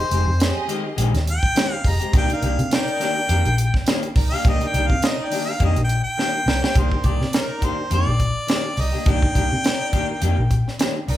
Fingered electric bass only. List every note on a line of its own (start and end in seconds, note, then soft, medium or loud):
0.12 0.25 F1 medium
0.27 0.51 F2 medium
0.98 1.11 A#1 medium
1.13 1.38 D#2 medium
1.85 1.98 F1 loud
2.14 2.27 C2 medium
2.42 2.56 C2 medium
2.59 2.83 C3 loud
3.29 3.43 F2 medium
3.46 3.70 A#1 medium
4.16 4.29 C2 medium
4.45 4.58 C2 loud
4.74 4.87 C2 loud
4.90 5.14 C3 medium
5.60 5.74 F2 loud
5.76 6.00 A#1 medium
6.46 6.60 C2 medium
6.76 6.89 C2 medium
7.05 7.18 C2 medium
7.20 7.45 C3 medium
7.91 8.04 F2 medium
8.07 8.31 A#1 medium
8.77 8.91 C2 medium
9.06 9.20 C2 medium
9.36 9.49 C2 medium
9.52 9.76 C3 medium
10.22 10.35 F2 medium
10.38 10.62 A#1 medium
11.08 11.17 C2 loud